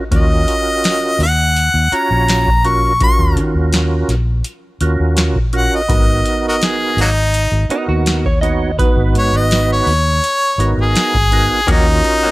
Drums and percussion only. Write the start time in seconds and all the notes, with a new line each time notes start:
0.12 kick, closed hi-hat
0.48 closed hi-hat
0.84 snare, closed hi-hat
1.20 open hi-hat
1.56 closed hi-hat
1.92 closed hi-hat
2.28 snare, closed hi-hat
2.47 kick
2.65 closed hi-hat
3.00 kick, closed hi-hat
3.37 closed hi-hat
3.73 snare, closed hi-hat
4.09 snare, closed hi-hat
4.44 closed hi-hat
4.81 closed hi-hat
5.17 snare, closed hi-hat
5.36 kick
5.53 closed hi-hat
5.89 kick, closed hi-hat
6.26 closed hi-hat
6.62 snare, closed hi-hat
6.98 open hi-hat
7.34 closed hi-hat
7.70 closed hi-hat
8.06 snare, closed hi-hat
8.25 kick
8.43 closed hi-hat
8.79 kick, closed hi-hat
9.15 closed hi-hat
9.51 snare, closed hi-hat
9.87 open hi-hat
10.24 closed hi-hat
10.60 closed hi-hat
10.95 snare, closed hi-hat
11.15 kick
11.32 closed hi-hat
11.68 kick, closed hi-hat
12.04 closed hi-hat